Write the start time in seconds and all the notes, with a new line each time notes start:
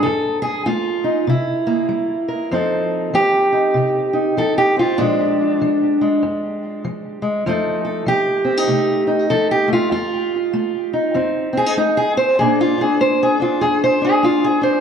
0.03 F2 A4
0.42 G#4
0.66 A3 F4
1.04 D#4
1.27 C3 E4
1.67 A#3
1.89 G3
2.28 A#4
2.51 F2 F3 C4 D#4 A4
3.14 F3 G4
3.52 D#4
3.74 C3
4.13 D#4
4.37 F3 A4
4.58 G4
4.76 C4 F4
4.98 A#2 F3 G#3 D4
5.61 F3
6.01 G#3
6.23 F2
6.84 F3
7.22 G#3
7.46 F2 F3 A3 D#4 A4
7.85 A4
8.06 F3 G4
8.45 C4
8.57 D#4
8.67 C3 A3
9.07 D#4
9.30 F3 A4
9.51 G4
9.68 A3
9.73 F4
9.91 F2 F4
10.53 A3
10.93 D#4
11.14 F2 C4
11.53 C4
11.57 G#4
11.66 D#4
11.77 A3 D#4
11.97 G#4
12.17 C4 C5
12.39 A#2 A#3 D4 G#4
12.61 F4
12.78 D4 G#4
13.01 A#3 C5
13.23 G#4
13.40 D4 F4
13.61 F2 G#4
13.84 C5
14.02 D4 G#4
14.23 A#3 F4
14.44 G#4
14.61 D4 C5